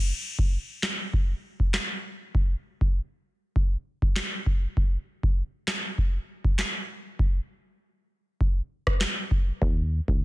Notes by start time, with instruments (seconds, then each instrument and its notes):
0.39 kick
0.83 snare, clap
1.14 kick
1.60 kick
1.74 snare, clap
2.35 kick
2.81 kick
3.56 kick
4.02 kick
4.16 snare, clap
4.46 kick
4.77 kick
5.23 kick
5.68 snare, clap
5.98 kick
6.45 kick
6.59 snare, clap
7.19 kick
8.41 kick
8.87 kick, cross-stick
9.01 snare, clap
9.31 kick
9.62 fm bass D#2, kick
10.08 fm bass C#2, kick